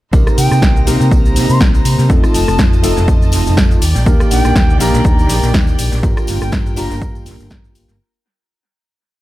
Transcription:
0.13 C2 A#3 C4 D#4 G4 A#4 C5 A#5, kick, tambourine, shaker
0.27 cross-stick, tambourine, shaker
0.38 C3 G5, open hi-hat, tambourine, shaker
0.51 C3, cross-stick, tambourine, shaker
0.62 C2, kick, snare, tambourine, shaker
0.76 shaker
0.86 C3 A#3 C4 D#4 G4 A#4, open hi-hat, tambourine, shaker
1.01 C3, tambourine, shaker
1.11 C2, kick, tambourine, shaker
1.25 tambourine, shaker
1.36 C3, open hi-hat, tambourine, shaker
1.50 C3 C6, tambourine, shaker
1.61 C2, kick, snare, tambourine, shaker
1.74 tambourine, shaker
1.85 C3, open hi-hat, tambourine, shaker
1.99 C3, tambourine, shaker
2.09 F2 A3 C4 D#4 F4 A4 D#5 A5, kick, tambourine, shaker
2.24 cross-stick, tambourine, shaker
2.34 F1 A5, open hi-hat, tambourine, shaker
2.48 F1, cross-stick, tambourine, shaker
2.58 F2, kick, snare, tambourine, shaker
2.73 tambourine, shaker
2.83 F1 A3 C4 D#4 F4 A4, open hi-hat, tambourine, shaker
2.97 F1, tambourine, shaker
3.08 F2, kick, tambourine, shaker
3.22 tambourine, shaker
3.32 F1, open hi-hat, tambourine, shaker
3.47 F1, tambourine, shaker
3.57 F2, kick, snare, tambourine, shaker
3.71 tambourine, shaker
3.82 D#2 D#3 D5 G5, open hi-hat, tambourine, shaker
3.96 A#1, tambourine, shaker
4.06 D#2 A#3 D4 D#4 G4 A#4, kick, tambourine, shaker
4.20 cross-stick, tambourine, shaker
4.31 A#1 G5, open hi-hat, tambourine, shaker
4.45 A#1, cross-stick, tambourine, shaker
4.56 D#2, kick, snare, tambourine, shaker
4.70 shaker
4.79 A#1 A#3 D4 D#4 G4 A#4 A#5, open hi-hat, tambourine, shaker
4.94 A#1, tambourine, shaker
5.04 D#2, kick, tambourine, shaker
5.19 tambourine, shaker
5.29 A#1, open hi-hat, tambourine, shaker
5.43 A#1, tambourine, shaker
5.54 D#2, kick, snare, tambourine, shaker
5.67 tambourine, shaker
5.79 A#1, open hi-hat, tambourine, shaker
5.92 A#1, tambourine, shaker
6.02 G2 A#3 D4 F4 G4 A#4 G5, kick, tambourine, shaker
6.17 cross-stick, tambourine, shaker
6.27 G1, open hi-hat, tambourine, shaker
6.41 G1 G5, cross-stick, tambourine, shaker
6.52 G2, kick, snare, tambourine, shaker
6.66 tambourine, shaker
6.76 G1 A#3 D4 F4 G4 A#4 A#5, open hi-hat, tambourine, shaker
6.91 G1, tambourine, shaker
7.02 G2, kick, tambourine, shaker
7.15 tambourine, shaker
7.26 G1, open hi-hat, tambourine, shaker
7.40 G1, tambourine, shaker
7.50 G2, kick, snare, tambourine, shaker
7.64 tambourine, shaker
7.75 G1, open hi-hat, tambourine, shaker
7.88 G1, tambourine, shaker

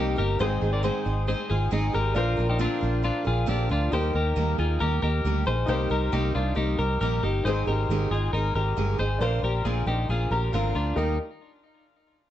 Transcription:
Already playing: C2 C3 G3 A#3 C4 D#4 G4 A#4
0.16 G1 A#3 D#4 G4 A#4
0.39 G#1 G#2 D#3 G#3 C4 D#4 G#4 C5
0.61 G#1 G#3 C4 D#4 G#4
0.73 A#4 D5
0.83 G#2 D#3 G#3 C4 D#4 G#4 C5
1.04 G#1 G#3 C4 D#4 G#4
1.27 G#3 C4 D#4 G#4 C5
1.50 G#1 G#3 C4 D#4 F4 G#4
1.71 G#1 G#2 D#3 G#3 C4 D#4 G#4
1.94 G#1 G#3 C4 D#4 G4 G#4 A#4
2.14 A#1 A#2 D3 F3 C4 D4 F4 A#4 C5
2.37 A#1 F3 C4 D4 A#4
2.50 D#4 G4
2.59 A#2 D3 F3 C4 D4 F4 A#4
2.81 A#1 F3 C4 D4 A#4
3.02 F3 C4 D4 F4 A#4
3.24 A#1 F3 C4 D4 F4 G#4 A#4
3.46 A#1 A#2 D3 F3 C4 D4 G4 A#4
3.50 D4
3.69 D2 F3 C4 D4 F4 A#4
3.91 D#2 D#3 G3 A#3 D#4 G4 A#4 C5
4.13 D#2 A#3 D#4 G4 A#4
4.36 D#2 D#3 G3 A#3 D#4 A#4
4.58 D#2 A#3 D#4 F4 G#4 A#4
4.80 D#2 G3 A#3 D#4 G4 A#4
5.02 D#2 A#3 D#4 G4 A#4
5.25 D2 D#3 G3 A#3 D#4 A#4
5.46 A#1 A#3 D#4 G#4 A#4 C5
5.66 C2 C3 G3 A#3 D#4 G4 A#4 C5
5.90 C2 A#3 D#4 G4 A#4
6.12 C2 C3 G3 A#3 D#4 G4 A#4
6.35 C2 A#3 D4 D#4 F4 A#4
6.55 C2 G3 A#3 D#4 G4 A#4
6.79 C2 A#3 D#4 G4 A#4
7.01 A#1 C3 G3 A#3 D#4 G4 A#4
7.23 G1 A#3 D#4 G4 A#4
7.44 G#1 G#2 D#3 G#3 C4 D#4 G#4 C5
7.67 G#1 G#3 C4 D#4 G4 G#4 A#4
7.89 G#1 G#2 D#3 G#3 C4 D#4 G#4
8.11 G#1 G#3 C4 D#4 F4 G#4
8.33 G#1 G#3 C4 D#4 G#4 A#4
8.55 G#1 G#3 C4 D#4 G4 G#4 A#4
8.77 G1 G#2 D#3 G#3 C4 D#4 G#4
8.98 G#1 G#3 C4 D#4 G#4 C5
9.19 A#1 A#2 D3 F3 C4 D4 A#4 C5
9.23 F4 A#4
9.43 A#1 F3 C4 D4 G4 A#4
9.65 A#1 A#2 D3 F3 C4 D4 F4 G#4 A#4
9.86 A#1 F3 C4 D4 D#4 G4 A#4
10.09 A#1 F3 C4 D4 F4 G#4 A#4
10.31 A#1 F3 C4 D4 G4 A#4 A#5
10.52 G#1 A#2 D3 F3 C4 D4 F4 A#4 F5
10.75 D2 F3 C4 D4 F4 A#4
10.96 D#2 D#3 G3 A#3 D#4 G4 A#4

